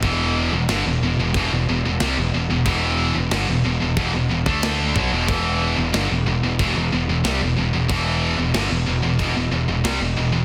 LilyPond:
<<
  \new Staff \with { instrumentName = "Distorted electric guitar" } { \clef bass \time 4/4 \key e \minor \tempo 4 = 92 <e, b, e>8. <e, b,>16 <g, d>16 <e, b,>16 <e, b,>16 <e, b,>16 <e, b,>16 <e, b,>16 <e, b,>16 <e, b,>16 <c g>16 <e, b,>16 <e, b,>16 <e, b,>16 | <e, b, e>8. <e, b,>16 <g, d>16 <e, b,>16 <e, b,>16 <e, b,>16 <e, b,>16 <e, b,>16 <e, b,>16 <d a d'>8. <b, fis>16 <e, b,>16 | <e, b, e>8. <e, b,>16 <g, d>16 <e, b,>16 <e, b,>16 <e, b,>16 <e, b,>16 <e, b,>16 <e, b,>16 <e, b,>16 <c g>16 <e, b,>16 <e, b,>16 <e, b,>16 | <e, b, e>8. <e, b,>16 <g, d>16 <e, b,>16 <e, b,>16 <e, b,>16 <e, b,>16 <e, b,>16 <e, b,>16 <e, b,>16 <c g>16 <e, b,>16 <e, b,>16 <e, b,>16 | }
  \new Staff \with { instrumentName = "Distorted electric guitar" } { \clef bass \time 4/4 \key e \minor <e, b, e>8. <e, b,>16 <g, d>16 <e, b,>16 <e, b,>16 <e, b,>16 <e, b,>16 <e, b,>16 <e, b,>16 <e, b,>16 <c g>16 <e, b,>16 <e, b,>16 <e, b,>16 | <e, b, e>8. <e, b,>16 <g, d>16 <e, b,>16 <e, b,>16 <e, b,>16 <e, b,>16 <e, b,>16 <e, b,>16 <d a d'>8. <b, fis>16 <e, b,>16 | <e, b, e>8. <e, b,>16 <g, d>16 <e, b,>16 <e, b,>16 <e, b,>16 <e, b,>16 <e, b,>16 <e, b,>16 <e, b,>16 <c g>16 <e, b,>16 <e, b,>16 <e, b,>16 | <e, b, e>8. <e, b,>16 <g, d>16 <e, b,>16 <e, b,>16 <e, b,>16 <e, b,>16 <e, b,>16 <e, b,>16 <e, b,>16 <c g>16 <e, b,>16 <e, b,>16 <e, b,>16 | }
  \new Staff \with { instrumentName = "Picked electric bass" } { \clef bass \time 4/4 \key e \minor e,,8. e,,16 g,,16 e,,16 e,,16 e,,16 e,,16 e,,16 e,,16 e,,16 c,16 e,,16 e,,16 e,,16 | e,,8. e,,16 g,,16 e,,16 e,,16 e,,16 e,,16 e,,16 e,,16 d,8. b,,16 e,,16 | e,,8. e,,16 g,,16 e,,16 e,,16 e,,16 e,,16 e,,16 e,,16 e,,16 c,16 e,,16 e,,16 e,,16 | e,,8. e,,16 g,,16 e,,16 e,,16 e,,16 e,,16 e,,16 e,,16 e,,16 c,16 e,,16 e,,16 e,,16 | }
  \new DrumStaff \with { instrumentName = "Drums" } \drummode { \time 4/4 <cymc bd>4 <cymc sn>4 <cymc bd>4 <cymc sn>4 | <cymc bd>4 <cymc sn>4 <cymc bd>8. bd16 <cymc sn>8 bd8 | <cymc bd>4 <cymc sn>4 <cymc bd>4 <cymc sn>4 | <cymc bd>4 <cymc sn>4 <cymc bd>4 <cymc sn>4 | }
>>